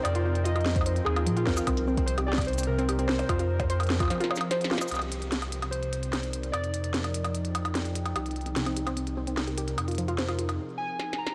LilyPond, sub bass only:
\new Staff \with { instrumentName = "Sub bass" } { \clef bass \time 4/4 \key c \minor \tempo 4 = 148 f,2~ f,8 ees,8 bes,8 ees,8 | c,1 | f,2 r2 | c,1 |
f,1 | c,1 | f,2 r2 | }